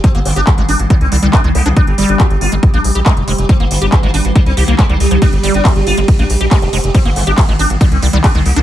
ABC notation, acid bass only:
X:1
M:4/4
L:1/16
Q:1/4=139
K:Gphr
V:1 name="Acid bass" clef=bass
F, B, z G z A, D z G, z G, G, z A, z D | G, z G,2 G2 A, A, z B, z G A, z A, z | F, B, z G z A, D z G, z G B, A, G, z F, | G, z G,2 G2 A, A, z B, z G A, z A, z |
F, B, z G z A, D z G, z G, G, z A, z D |]